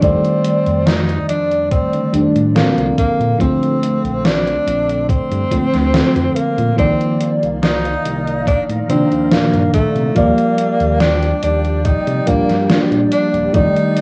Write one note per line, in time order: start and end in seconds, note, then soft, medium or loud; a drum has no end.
0.00 0.17 F2 loud
0.00 2.08 D#3 loud
0.00 2.08 G3 medium
0.00 2.09 A3 medium
0.00 0.88 C4 loud
0.00 2.09 D5 loud
0.00 kick loud
0.00 closed hi-hat medium
0.25 closed hi-hat soft
0.44 closed hi-hat medium
0.66 1.19 F2 medium
0.66 closed hi-hat soft
0.87 1.28 D#4 loud
0.87 snare loud
0.87 closed hi-hat medium
1.09 closed hi-hat soft
1.29 1.82 F2 loud
1.29 1.68 D4 loud
1.29 closed hi-hat medium
1.51 closed hi-hat soft
1.71 2.25 C4 loud
1.71 kick loud
1.71 closed hi-hat medium
1.93 2.07 D3 medium
1.93 closed hi-hat soft
2.13 2.28 F1 medium
2.13 2.50 D#3 medium
2.13 2.51 G3 medium
2.13 2.51 A3 medium
2.13 2.51 D4 medium
2.13 closed hi-hat medium
2.35 2.63 A2 medium
2.35 closed hi-hat soft
2.55 3.35 D3 medium
2.55 3.35 F3 medium
2.55 2.95 A#3 medium
2.55 3.35 C4 medium
2.55 3.35 A4 medium
2.55 snare loud
2.55 closed hi-hat medium
2.77 2.91 C2 loud
2.77 closed hi-hat soft
2.98 3.37 A#3 loud
2.98 kick loud
2.98 closed hi-hat loud
3.20 3.34 A#2 medium
3.20 closed hi-hat soft
3.38 3.55 A#1 loud
3.38 5.46 D3 loud
3.38 5.46 F3 medium
3.38 5.47 A3 medium
3.38 4.27 C4 loud
3.38 5.47 C4 loud
3.38 kick loud
3.38 closed hi-hat medium
3.63 closed hi-hat soft
3.83 closed hi-hat medium
4.04 4.56 A#1 medium
4.04 closed hi-hat soft
4.25 5.08 D4 loud
4.25 snare loud
4.25 closed hi-hat medium
4.47 closed hi-hat soft
4.67 5.20 A#1 loud
4.67 closed hi-hat medium
4.89 closed hi-hat soft
5.09 6.37 C4 loud
5.09 kick loud
5.09 closed hi-hat medium
5.31 5.45 G2 medium
5.31 closed hi-hat soft
5.50 5.66 A#2 medium
5.50 5.88 D3 medium
5.50 5.89 F3 medium
5.50 5.89 A3 medium
5.50 5.89 C4 medium
5.50 kick medium
5.50 closed hi-hat medium
5.74 6.02 D2 medium
5.74 snare soft
5.74 closed hi-hat soft
5.93 6.73 D3 medium
5.93 6.73 F3 medium
5.93 6.74 C4 medium
5.93 6.73 A4 medium
5.93 snare loud
5.93 closed hi-hat medium
6.16 6.29 F2 medium
6.16 closed hi-hat soft
6.36 6.77 A#3 loud
6.36 closed hi-hat medium
6.58 6.72 A#2 medium
6.58 closed hi-hat soft
6.76 6.93 C2 loud
6.76 8.84 D#3 loud
6.76 10.13 D#3 medium
6.76 8.84 F3 medium
6.76 8.85 A#3 medium
6.76 7.32 C4 loud
6.76 14.01 D5 medium
6.76 8.85 D5 loud
6.76 10.13 F5 medium
6.76 10.13 A#5 medium
6.76 kick loud
6.76 closed hi-hat medium
7.01 closed hi-hat soft
7.21 closed hi-hat medium
7.42 7.95 C2 medium
7.42 closed hi-hat soft
7.63 8.43 D#4 loud
7.63 snare loud
7.63 closed hi-hat medium
7.85 closed hi-hat soft
8.05 8.58 C2 medium
8.05 closed hi-hat medium
8.27 closed hi-hat soft
8.47 8.64 D4 loud
8.47 kick loud
8.47 closed hi-hat medium
8.69 8.83 A2 medium
8.69 closed hi-hat soft
8.88 9.04 C3 medium
8.88 9.26 D#3 medium
8.88 9.27 F3 medium
8.88 9.27 A#3 medium
8.88 9.29 C4 loud
8.88 9.27 D4 medium
8.88 closed hi-hat medium
9.11 9.40 D#2 medium
9.11 closed hi-hat soft
9.31 10.11 A#2 medium
9.31 10.11 D#3 medium
9.31 10.11 F3 medium
9.31 9.71 A#3 medium
9.31 10.12 D4 medium
9.31 snare loud
9.31 closed hi-hat medium
9.54 9.67 G2 medium
9.54 closed hi-hat soft
9.74 10.13 A3 loud
9.74 kick loud
9.74 closed hi-hat medium
9.96 10.10 C3 medium
9.96 closed hi-hat soft
10.14 10.31 D#2 loud
10.14 12.22 F3 loud
10.14 12.22 G3 medium
10.14 14.01 G3 medium
10.14 10.97 A#3 loud
10.14 12.23 A#3 medium
10.14 12.23 D5 loud
10.14 13.51 G5 medium
10.14 kick loud
10.14 closed hi-hat medium
10.38 closed hi-hat soft
10.58 closed hi-hat medium
10.80 11.32 D#2 medium
10.80 closed hi-hat soft
11.00 11.40 D4 loud
11.00 snare loud
11.00 closed hi-hat medium
11.22 closed hi-hat soft
11.42 11.96 D#2 loud
11.42 11.86 D4 loud
11.42 closed hi-hat medium
11.64 closed hi-hat soft
11.85 12.29 D#4 loud
11.85 kick loud
11.85 closed hi-hat medium
12.07 12.21 C3 medium
12.07 closed hi-hat soft
12.26 12.42 D#1 medium
12.26 12.64 F3 medium
12.26 12.65 G3 medium
12.26 12.86 A#3 loud
12.26 12.65 A#3 medium
12.26 12.65 D4 medium
12.26 kick medium
12.26 closed hi-hat medium
12.49 12.77 G2 medium
12.49 snare soft
12.49 closed hi-hat soft
12.69 13.49 F3 medium
12.69 13.49 G3 medium
12.69 13.50 A#3 medium
12.69 13.50 D4 medium
12.69 snare loud
12.69 closed hi-hat medium
12.91 13.05 A#1 medium
12.91 closed hi-hat soft
13.12 13.56 D4 loud
13.12 closed hi-hat medium
13.34 13.47 D#1 medium
13.34 closed hi-hat soft
13.53 13.69 F2 loud
13.53 14.01 D#3 loud
13.53 14.01 G3 medium
13.53 14.01 A3 medium
13.53 14.01 D#4 loud
13.53 14.01 D5 loud
13.53 14.01 G5 medium
13.53 14.01 A5 medium
13.53 kick loud
13.53 closed hi-hat medium
13.76 closed hi-hat soft
13.97 closed hi-hat medium